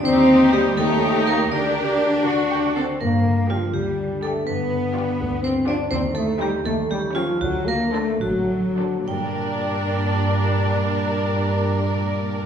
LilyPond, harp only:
\new Staff \with { instrumentName = "Harp" } { \time 6/8 \key g \minor \tempo 4. = 81 <ees g>4 <c' ees'>8 ees8 des'8 <des' ees'>8 | d4 <d' g'>8 d8 d'8 <d' fis'>8 | g,8 d8 g8 d8 d'8 g8 | g,8 d8 g8 d8 f'8 g8 |
ees8 ees'8 <ees' g'>8 ees8 des'8 <des' g'>8 | d8 a8 c'8 a8 d'8 c'8 | <g, g bes d' g' d''>2.~ | <g, g bes d' g' d''>2. | }